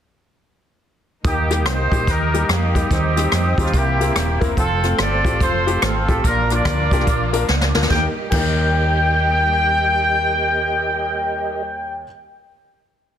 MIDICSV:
0, 0, Header, 1, 7, 480
1, 0, Start_track
1, 0, Key_signature, -3, "major"
1, 0, Tempo, 415800
1, 1437, Time_signature, 4, 2, 24, 8
1, 15216, End_track
2, 0, Start_track
2, 0, Title_t, "Tonewheel organ"
2, 0, Program_c, 0, 16
2, 1437, Note_on_c, 0, 75, 50
2, 1443, Note_on_c, 0, 79, 50
2, 1443, Note_on_c, 0, 87, 62
2, 1447, Note_on_c, 0, 70, 55
2, 3340, Note_off_c, 0, 70, 0
2, 3358, Note_on_c, 0, 72, 62
2, 4286, Note_off_c, 0, 75, 0
2, 4289, Note_off_c, 0, 87, 0
2, 4305, Note_on_c, 0, 76, 55
2, 4307, Note_off_c, 0, 72, 0
2, 4307, Note_on_c, 0, 84, 62
2, 4314, Note_on_c, 0, 70, 54
2, 5240, Note_off_c, 0, 79, 0
2, 5260, Note_on_c, 0, 77, 48
2, 5261, Note_off_c, 0, 76, 0
2, 5263, Note_on_c, 0, 69, 61
2, 5266, Note_off_c, 0, 70, 0
2, 5271, Note_on_c, 0, 72, 53
2, 7167, Note_off_c, 0, 84, 0
2, 7174, Note_off_c, 0, 69, 0
2, 7178, Note_off_c, 0, 72, 0
2, 7192, Note_on_c, 0, 86, 64
2, 7198, Note_on_c, 0, 70, 56
2, 7199, Note_on_c, 0, 74, 54
2, 9078, Note_off_c, 0, 77, 0
2, 9101, Note_off_c, 0, 86, 0
2, 9105, Note_off_c, 0, 70, 0
2, 9105, Note_off_c, 0, 74, 0
2, 9130, Note_on_c, 0, 70, 47
2, 9131, Note_on_c, 0, 67, 59
2, 9136, Note_on_c, 0, 75, 61
2, 13419, Note_off_c, 0, 70, 0
2, 13420, Note_off_c, 0, 67, 0
2, 13425, Note_off_c, 0, 75, 0
2, 15216, End_track
3, 0, Start_track
3, 0, Title_t, "Horn section"
3, 0, Program_c, 1, 61
3, 1454, Note_on_c, 1, 58, 49
3, 1459, Note_on_c, 1, 63, 51
3, 1461, Note_on_c, 1, 67, 68
3, 1896, Note_off_c, 1, 67, 0
3, 1929, Note_off_c, 1, 63, 0
3, 1934, Note_on_c, 1, 67, 64
3, 1940, Note_on_c, 1, 72, 87
3, 1943, Note_on_c, 1, 63, 62
3, 2358, Note_off_c, 1, 58, 0
3, 2393, Note_off_c, 1, 67, 0
3, 2395, Note_off_c, 1, 63, 0
3, 2407, Note_off_c, 1, 72, 0
3, 2407, Note_on_c, 1, 67, 60
3, 2408, Note_on_c, 1, 63, 53
3, 2422, Note_on_c, 1, 70, 82
3, 2877, Note_off_c, 1, 63, 0
3, 2879, Note_off_c, 1, 67, 0
3, 2886, Note_on_c, 1, 58, 61
3, 2888, Note_off_c, 1, 70, 0
3, 2891, Note_on_c, 1, 63, 52
3, 2892, Note_on_c, 1, 67, 75
3, 3327, Note_off_c, 1, 58, 0
3, 3330, Note_off_c, 1, 63, 0
3, 3363, Note_off_c, 1, 67, 0
3, 3370, Note_on_c, 1, 60, 55
3, 3370, Note_on_c, 1, 63, 59
3, 3388, Note_on_c, 1, 67, 75
3, 4106, Note_off_c, 1, 67, 0
3, 4163, Note_on_c, 1, 65, 80
3, 4276, Note_off_c, 1, 60, 0
3, 4276, Note_off_c, 1, 63, 0
3, 4328, Note_off_c, 1, 65, 0
3, 4334, Note_on_c, 1, 58, 56
3, 4336, Note_on_c, 1, 64, 58
3, 4342, Note_on_c, 1, 67, 85
3, 5110, Note_off_c, 1, 67, 0
3, 5239, Note_off_c, 1, 58, 0
3, 5240, Note_off_c, 1, 64, 0
3, 5283, Note_on_c, 1, 60, 65
3, 5285, Note_on_c, 1, 65, 55
3, 5297, Note_on_c, 1, 69, 81
3, 5734, Note_off_c, 1, 69, 0
3, 5752, Note_off_c, 1, 65, 0
3, 5764, Note_on_c, 1, 69, 70
3, 5766, Note_on_c, 1, 65, 70
3, 5775, Note_on_c, 1, 74, 93
3, 6195, Note_off_c, 1, 60, 0
3, 6234, Note_off_c, 1, 65, 0
3, 6235, Note_off_c, 1, 69, 0
3, 6247, Note_off_c, 1, 74, 0
3, 6248, Note_on_c, 1, 65, 65
3, 6249, Note_on_c, 1, 69, 66
3, 6265, Note_on_c, 1, 72, 94
3, 6700, Note_off_c, 1, 72, 0
3, 6714, Note_off_c, 1, 65, 0
3, 6721, Note_off_c, 1, 69, 0
3, 6728, Note_on_c, 1, 65, 60
3, 6732, Note_on_c, 1, 60, 56
3, 6735, Note_on_c, 1, 69, 77
3, 7171, Note_off_c, 1, 65, 0
3, 7174, Note_off_c, 1, 60, 0
3, 7208, Note_off_c, 1, 69, 0
3, 7216, Note_on_c, 1, 62, 59
3, 7221, Note_on_c, 1, 65, 59
3, 7228, Note_on_c, 1, 70, 87
3, 7501, Note_off_c, 1, 65, 0
3, 7505, Note_off_c, 1, 70, 0
3, 7514, Note_on_c, 1, 65, 61
3, 7519, Note_on_c, 1, 70, 64
3, 7528, Note_on_c, 1, 74, 90
3, 8124, Note_off_c, 1, 62, 0
3, 8424, Note_off_c, 1, 65, 0
3, 8427, Note_off_c, 1, 70, 0
3, 8477, Note_off_c, 1, 74, 0
3, 9118, Note_on_c, 1, 79, 69
3, 9290, Note_off_c, 1, 79, 0
3, 9602, Note_on_c, 1, 79, 85
3, 13841, Note_off_c, 1, 79, 0
3, 15216, End_track
4, 0, Start_track
4, 0, Title_t, "Grand piano"
4, 0, Program_c, 2, 0
4, 1436, Note_on_c, 2, 51, 51
4, 1734, Note_on_c, 2, 58, 52
4, 1735, Note_on_c, 2, 55, 53
4, 1739, Note_on_c, 2, 63, 53
4, 1740, Note_on_c, 2, 67, 64
4, 1859, Note_off_c, 2, 58, 0
4, 1860, Note_off_c, 2, 55, 0
4, 1861, Note_off_c, 2, 63, 0
4, 1862, Note_off_c, 2, 67, 0
4, 2170, Note_off_c, 2, 51, 0
4, 2216, Note_on_c, 2, 55, 65
4, 2216, Note_on_c, 2, 58, 57
4, 2222, Note_on_c, 2, 67, 70
4, 2223, Note_on_c, 2, 63, 57
4, 2339, Note_off_c, 2, 58, 0
4, 2340, Note_off_c, 2, 55, 0
4, 2343, Note_off_c, 2, 63, 0
4, 2343, Note_off_c, 2, 67, 0
4, 2697, Note_on_c, 2, 55, 64
4, 2699, Note_on_c, 2, 58, 61
4, 2700, Note_on_c, 2, 63, 56
4, 2702, Note_on_c, 2, 67, 69
4, 2820, Note_off_c, 2, 55, 0
4, 2821, Note_off_c, 2, 58, 0
4, 2821, Note_off_c, 2, 63, 0
4, 2823, Note_off_c, 2, 67, 0
4, 3171, Note_on_c, 2, 55, 74
4, 3172, Note_on_c, 2, 58, 58
4, 3174, Note_on_c, 2, 63, 63
4, 3175, Note_on_c, 2, 67, 75
4, 3297, Note_off_c, 2, 55, 0
4, 3297, Note_off_c, 2, 58, 0
4, 3298, Note_off_c, 2, 63, 0
4, 3299, Note_off_c, 2, 67, 0
4, 3351, Note_on_c, 2, 51, 53
4, 3648, Note_on_c, 2, 55, 55
4, 3651, Note_on_c, 2, 60, 56
4, 3654, Note_on_c, 2, 63, 56
4, 3654, Note_on_c, 2, 67, 67
4, 3775, Note_off_c, 2, 55, 0
4, 3777, Note_off_c, 2, 60, 0
4, 3778, Note_off_c, 2, 63, 0
4, 3778, Note_off_c, 2, 67, 0
4, 4088, Note_off_c, 2, 51, 0
4, 4132, Note_on_c, 2, 55, 64
4, 4135, Note_on_c, 2, 63, 63
4, 4136, Note_on_c, 2, 60, 56
4, 4137, Note_on_c, 2, 67, 75
4, 4257, Note_off_c, 2, 55, 0
4, 4259, Note_off_c, 2, 60, 0
4, 4259, Note_off_c, 2, 63, 0
4, 4260, Note_off_c, 2, 67, 0
4, 4314, Note_on_c, 2, 48, 54
4, 4618, Note_on_c, 2, 60, 61
4, 4619, Note_on_c, 2, 58, 62
4, 4619, Note_on_c, 2, 64, 59
4, 4622, Note_on_c, 2, 67, 69
4, 4740, Note_off_c, 2, 60, 0
4, 4741, Note_off_c, 2, 58, 0
4, 4741, Note_off_c, 2, 64, 0
4, 4743, Note_off_c, 2, 67, 0
4, 5050, Note_off_c, 2, 48, 0
4, 5088, Note_on_c, 2, 58, 84
4, 5091, Note_on_c, 2, 70, 87
4, 5093, Note_on_c, 2, 60, 74
4, 5093, Note_on_c, 2, 64, 72
4, 5216, Note_off_c, 2, 58, 0
4, 5217, Note_off_c, 2, 70, 0
4, 5218, Note_off_c, 2, 60, 0
4, 5218, Note_off_c, 2, 64, 0
4, 5573, Note_on_c, 2, 57, 58
4, 5574, Note_on_c, 2, 65, 52
4, 5576, Note_on_c, 2, 60, 58
4, 5576, Note_on_c, 2, 69, 59
4, 5699, Note_off_c, 2, 57, 0
4, 5699, Note_off_c, 2, 65, 0
4, 5700, Note_off_c, 2, 60, 0
4, 5700, Note_off_c, 2, 69, 0
4, 6054, Note_on_c, 2, 57, 65
4, 6057, Note_on_c, 2, 60, 60
4, 6057, Note_on_c, 2, 65, 61
4, 6057, Note_on_c, 2, 67, 72
4, 6180, Note_off_c, 2, 57, 0
4, 6181, Note_off_c, 2, 60, 0
4, 6181, Note_off_c, 2, 65, 0
4, 6181, Note_off_c, 2, 67, 0
4, 6538, Note_on_c, 2, 57, 66
4, 6543, Note_on_c, 2, 60, 62
4, 6543, Note_on_c, 2, 65, 59
4, 6546, Note_on_c, 2, 67, 76
4, 6662, Note_off_c, 2, 57, 0
4, 6665, Note_off_c, 2, 60, 0
4, 6665, Note_off_c, 2, 65, 0
4, 6666, Note_off_c, 2, 67, 0
4, 7020, Note_on_c, 2, 57, 70
4, 7021, Note_on_c, 2, 60, 59
4, 7023, Note_on_c, 2, 65, 60
4, 7026, Note_on_c, 2, 67, 73
4, 7144, Note_off_c, 2, 57, 0
4, 7145, Note_off_c, 2, 60, 0
4, 7146, Note_off_c, 2, 65, 0
4, 7147, Note_off_c, 2, 67, 0
4, 7210, Note_on_c, 2, 46, 53
4, 7518, Note_on_c, 2, 62, 52
4, 7519, Note_on_c, 2, 58, 58
4, 7522, Note_on_c, 2, 70, 56
4, 7523, Note_on_c, 2, 65, 53
4, 7634, Note_off_c, 2, 58, 0
4, 7634, Note_off_c, 2, 62, 0
4, 7635, Note_off_c, 2, 70, 0
4, 7636, Note_off_c, 2, 65, 0
4, 7942, Note_off_c, 2, 46, 0
4, 7991, Note_on_c, 2, 58, 68
4, 7993, Note_on_c, 2, 62, 57
4, 7994, Note_on_c, 2, 67, 67
4, 7995, Note_on_c, 2, 65, 57
4, 8111, Note_off_c, 2, 58, 0
4, 8112, Note_off_c, 2, 62, 0
4, 8112, Note_off_c, 2, 67, 0
4, 8113, Note_off_c, 2, 65, 0
4, 8461, Note_on_c, 2, 58, 72
4, 8463, Note_on_c, 2, 70, 92
4, 8464, Note_on_c, 2, 62, 65
4, 8464, Note_on_c, 2, 65, 69
4, 8587, Note_off_c, 2, 58, 0
4, 8587, Note_off_c, 2, 70, 0
4, 8588, Note_off_c, 2, 62, 0
4, 8588, Note_off_c, 2, 65, 0
4, 8945, Note_on_c, 2, 58, 80
4, 8948, Note_on_c, 2, 62, 72
4, 8948, Note_on_c, 2, 65, 78
4, 8949, Note_on_c, 2, 70, 82
4, 9069, Note_off_c, 2, 58, 0
4, 9070, Note_off_c, 2, 62, 0
4, 9070, Note_off_c, 2, 65, 0
4, 9071, Note_off_c, 2, 70, 0
4, 9100, Note_on_c, 2, 58, 70
4, 9113, Note_on_c, 2, 63, 58
4, 9123, Note_on_c, 2, 39, 56
4, 9131, Note_on_c, 2, 67, 59
4, 9147, Note_on_c, 2, 70, 73
4, 9280, Note_off_c, 2, 58, 0
4, 9287, Note_off_c, 2, 63, 0
4, 9292, Note_off_c, 2, 39, 0
4, 9296, Note_off_c, 2, 67, 0
4, 9305, Note_off_c, 2, 70, 0
4, 9590, Note_on_c, 2, 58, 73
4, 9607, Note_on_c, 2, 63, 66
4, 9614, Note_on_c, 2, 39, 70
4, 9623, Note_on_c, 2, 67, 60
4, 9640, Note_on_c, 2, 70, 83
4, 13878, Note_off_c, 2, 58, 0
4, 13896, Note_off_c, 2, 63, 0
4, 13903, Note_off_c, 2, 39, 0
4, 13912, Note_off_c, 2, 67, 0
4, 13929, Note_off_c, 2, 70, 0
4, 15216, End_track
5, 0, Start_track
5, 0, Title_t, "String section"
5, 0, Program_c, 3, 48
5, 1436, Note_on_c, 3, 63, 74
5, 1441, Note_on_c, 3, 55, 61
5, 1444, Note_on_c, 3, 58, 67
5, 1448, Note_on_c, 3, 51, 69
5, 3339, Note_off_c, 3, 58, 0
5, 3363, Note_on_c, 3, 60, 61
5, 4285, Note_off_c, 3, 63, 0
5, 4291, Note_off_c, 3, 51, 0
5, 4302, Note_off_c, 3, 60, 0
5, 4311, Note_on_c, 3, 64, 70
5, 4316, Note_on_c, 3, 60, 54
5, 4317, Note_on_c, 3, 58, 54
5, 5239, Note_off_c, 3, 55, 0
5, 5260, Note_off_c, 3, 60, 0
5, 5264, Note_off_c, 3, 64, 0
5, 5267, Note_off_c, 3, 58, 0
5, 5271, Note_on_c, 3, 53, 75
5, 5273, Note_on_c, 3, 57, 66
5, 5274, Note_on_c, 3, 60, 65
5, 5275, Note_on_c, 3, 65, 80
5, 7179, Note_off_c, 3, 57, 0
5, 7180, Note_off_c, 3, 60, 0
5, 7181, Note_off_c, 3, 65, 0
5, 7195, Note_on_c, 3, 65, 80
5, 7196, Note_on_c, 3, 58, 60
5, 7196, Note_on_c, 3, 62, 70
5, 9084, Note_off_c, 3, 53, 0
5, 9103, Note_off_c, 3, 58, 0
5, 9103, Note_off_c, 3, 65, 0
5, 9104, Note_off_c, 3, 62, 0
5, 9127, Note_on_c, 3, 58, 62
5, 9128, Note_on_c, 3, 67, 80
5, 9132, Note_on_c, 3, 55, 72
5, 9135, Note_on_c, 3, 63, 66
5, 13416, Note_off_c, 3, 58, 0
5, 13417, Note_off_c, 3, 67, 0
5, 13421, Note_off_c, 3, 55, 0
5, 13423, Note_off_c, 3, 63, 0
5, 15216, End_track
6, 0, Start_track
6, 0, Title_t, "Fingered electric bass"
6, 0, Program_c, 4, 33
6, 1441, Note_on_c, 4, 39, 100
6, 1917, Note_off_c, 4, 39, 0
6, 1917, Note_on_c, 4, 36, 70
6, 2172, Note_off_c, 4, 36, 0
6, 2209, Note_on_c, 4, 34, 85
6, 2364, Note_off_c, 4, 34, 0
6, 2396, Note_on_c, 4, 39, 74
6, 2803, Note_off_c, 4, 39, 0
6, 2871, Note_on_c, 4, 41, 70
6, 3281, Note_off_c, 4, 41, 0
6, 3357, Note_on_c, 4, 39, 83
6, 3764, Note_off_c, 4, 39, 0
6, 3835, Note_on_c, 4, 41, 79
6, 4091, Note_off_c, 4, 41, 0
6, 4314, Note_on_c, 4, 36, 82
6, 4723, Note_off_c, 4, 36, 0
6, 4791, Note_on_c, 4, 27, 81
6, 5049, Note_off_c, 4, 27, 0
6, 5097, Note_on_c, 4, 28, 72
6, 5249, Note_off_c, 4, 28, 0
6, 5277, Note_on_c, 4, 29, 101
6, 5685, Note_off_c, 4, 29, 0
6, 5758, Note_on_c, 4, 31, 79
6, 6014, Note_off_c, 4, 31, 0
6, 6054, Note_on_c, 4, 33, 85
6, 6208, Note_off_c, 4, 33, 0
6, 6240, Note_on_c, 4, 29, 78
6, 6648, Note_off_c, 4, 29, 0
6, 6722, Note_on_c, 4, 32, 89
6, 6977, Note_off_c, 4, 32, 0
6, 7024, Note_on_c, 4, 33, 84
6, 7175, Note_off_c, 4, 33, 0
6, 7208, Note_on_c, 4, 34, 86
6, 7614, Note_off_c, 4, 34, 0
6, 7680, Note_on_c, 4, 38, 72
6, 7937, Note_off_c, 4, 38, 0
6, 7980, Note_on_c, 4, 36, 79
6, 8164, Note_off_c, 4, 36, 0
6, 8164, Note_on_c, 4, 34, 82
6, 8572, Note_off_c, 4, 34, 0
6, 8646, Note_on_c, 4, 37, 76
6, 8901, Note_off_c, 4, 37, 0
6, 8954, Note_on_c, 4, 38, 74
6, 9103, Note_off_c, 4, 38, 0
6, 9125, Note_on_c, 4, 39, 83
6, 9293, Note_off_c, 4, 39, 0
6, 9602, Note_on_c, 4, 39, 79
6, 13890, Note_off_c, 4, 39, 0
6, 15216, End_track
7, 0, Start_track
7, 0, Title_t, "Drums"
7, 1435, Note_on_c, 9, 42, 62
7, 1438, Note_on_c, 9, 36, 95
7, 1551, Note_off_c, 9, 42, 0
7, 1553, Note_off_c, 9, 36, 0
7, 1736, Note_on_c, 9, 42, 61
7, 1743, Note_on_c, 9, 37, 33
7, 1851, Note_off_c, 9, 42, 0
7, 1859, Note_off_c, 9, 37, 0
7, 1913, Note_on_c, 9, 37, 99
7, 1919, Note_on_c, 9, 42, 86
7, 2029, Note_off_c, 9, 37, 0
7, 2035, Note_off_c, 9, 42, 0
7, 2212, Note_on_c, 9, 36, 78
7, 2224, Note_on_c, 9, 42, 61
7, 2328, Note_off_c, 9, 36, 0
7, 2340, Note_off_c, 9, 42, 0
7, 2394, Note_on_c, 9, 36, 106
7, 2396, Note_on_c, 9, 42, 76
7, 2510, Note_off_c, 9, 36, 0
7, 2511, Note_off_c, 9, 42, 0
7, 2702, Note_on_c, 9, 42, 66
7, 2817, Note_off_c, 9, 42, 0
7, 2876, Note_on_c, 9, 42, 85
7, 2878, Note_on_c, 9, 37, 94
7, 2991, Note_off_c, 9, 42, 0
7, 2994, Note_off_c, 9, 37, 0
7, 3176, Note_on_c, 9, 36, 80
7, 3179, Note_on_c, 9, 42, 65
7, 3292, Note_off_c, 9, 36, 0
7, 3294, Note_off_c, 9, 42, 0
7, 3356, Note_on_c, 9, 36, 97
7, 3356, Note_on_c, 9, 42, 63
7, 3471, Note_off_c, 9, 36, 0
7, 3471, Note_off_c, 9, 42, 0
7, 3658, Note_on_c, 9, 42, 69
7, 3665, Note_on_c, 9, 37, 29
7, 3773, Note_off_c, 9, 42, 0
7, 3781, Note_off_c, 9, 37, 0
7, 3832, Note_on_c, 9, 37, 97
7, 3838, Note_on_c, 9, 42, 85
7, 3947, Note_off_c, 9, 37, 0
7, 3953, Note_off_c, 9, 42, 0
7, 4130, Note_on_c, 9, 36, 78
7, 4142, Note_on_c, 9, 42, 65
7, 4227, Note_on_c, 9, 37, 30
7, 4245, Note_off_c, 9, 36, 0
7, 4257, Note_off_c, 9, 42, 0
7, 4312, Note_on_c, 9, 36, 100
7, 4313, Note_on_c, 9, 42, 70
7, 4343, Note_off_c, 9, 37, 0
7, 4428, Note_off_c, 9, 36, 0
7, 4429, Note_off_c, 9, 42, 0
7, 4625, Note_on_c, 9, 42, 65
7, 4741, Note_off_c, 9, 42, 0
7, 4797, Note_on_c, 9, 42, 87
7, 4799, Note_on_c, 9, 37, 91
7, 4912, Note_off_c, 9, 42, 0
7, 4915, Note_off_c, 9, 37, 0
7, 5097, Note_on_c, 9, 36, 84
7, 5098, Note_on_c, 9, 42, 62
7, 5212, Note_off_c, 9, 36, 0
7, 5213, Note_off_c, 9, 42, 0
7, 5277, Note_on_c, 9, 36, 86
7, 5278, Note_on_c, 9, 42, 64
7, 5392, Note_off_c, 9, 36, 0
7, 5394, Note_off_c, 9, 42, 0
7, 5579, Note_on_c, 9, 42, 67
7, 5587, Note_on_c, 9, 37, 31
7, 5695, Note_off_c, 9, 42, 0
7, 5703, Note_off_c, 9, 37, 0
7, 5755, Note_on_c, 9, 37, 95
7, 5762, Note_on_c, 9, 42, 78
7, 5871, Note_off_c, 9, 37, 0
7, 5877, Note_off_c, 9, 42, 0
7, 6056, Note_on_c, 9, 36, 75
7, 6066, Note_on_c, 9, 42, 62
7, 6171, Note_off_c, 9, 36, 0
7, 6182, Note_off_c, 9, 42, 0
7, 6239, Note_on_c, 9, 36, 99
7, 6241, Note_on_c, 9, 42, 77
7, 6355, Note_off_c, 9, 36, 0
7, 6357, Note_off_c, 9, 42, 0
7, 6549, Note_on_c, 9, 42, 62
7, 6664, Note_off_c, 9, 42, 0
7, 6718, Note_on_c, 9, 42, 92
7, 6721, Note_on_c, 9, 37, 99
7, 6834, Note_off_c, 9, 42, 0
7, 6836, Note_off_c, 9, 37, 0
7, 7025, Note_on_c, 9, 36, 83
7, 7027, Note_on_c, 9, 42, 64
7, 7140, Note_off_c, 9, 36, 0
7, 7142, Note_off_c, 9, 42, 0
7, 7206, Note_on_c, 9, 36, 92
7, 7208, Note_on_c, 9, 42, 74
7, 7321, Note_off_c, 9, 36, 0
7, 7323, Note_off_c, 9, 42, 0
7, 7504, Note_on_c, 9, 42, 64
7, 7512, Note_on_c, 9, 37, 31
7, 7620, Note_off_c, 9, 42, 0
7, 7627, Note_off_c, 9, 37, 0
7, 7680, Note_on_c, 9, 36, 78
7, 7680, Note_on_c, 9, 37, 99
7, 7686, Note_on_c, 9, 42, 80
7, 7795, Note_off_c, 9, 36, 0
7, 7795, Note_off_c, 9, 37, 0
7, 7801, Note_off_c, 9, 42, 0
7, 7981, Note_on_c, 9, 36, 88
7, 7992, Note_on_c, 9, 42, 59
7, 8079, Note_on_c, 9, 37, 25
7, 8097, Note_off_c, 9, 36, 0
7, 8108, Note_off_c, 9, 42, 0
7, 8162, Note_on_c, 9, 42, 72
7, 8163, Note_on_c, 9, 36, 99
7, 8195, Note_off_c, 9, 37, 0
7, 8277, Note_off_c, 9, 42, 0
7, 8278, Note_off_c, 9, 36, 0
7, 8465, Note_on_c, 9, 42, 66
7, 8581, Note_off_c, 9, 42, 0
7, 8640, Note_on_c, 9, 38, 50
7, 8755, Note_off_c, 9, 38, 0
7, 8787, Note_on_c, 9, 38, 55
7, 8902, Note_off_c, 9, 38, 0
7, 8942, Note_on_c, 9, 38, 68
7, 9031, Note_off_c, 9, 38, 0
7, 9031, Note_on_c, 9, 38, 71
7, 9118, Note_off_c, 9, 38, 0
7, 9118, Note_on_c, 9, 38, 67
7, 9123, Note_on_c, 9, 36, 88
7, 9233, Note_off_c, 9, 38, 0
7, 9239, Note_off_c, 9, 36, 0
7, 9598, Note_on_c, 9, 49, 77
7, 9604, Note_on_c, 9, 36, 92
7, 9713, Note_off_c, 9, 49, 0
7, 9720, Note_off_c, 9, 36, 0
7, 15216, End_track
0, 0, End_of_file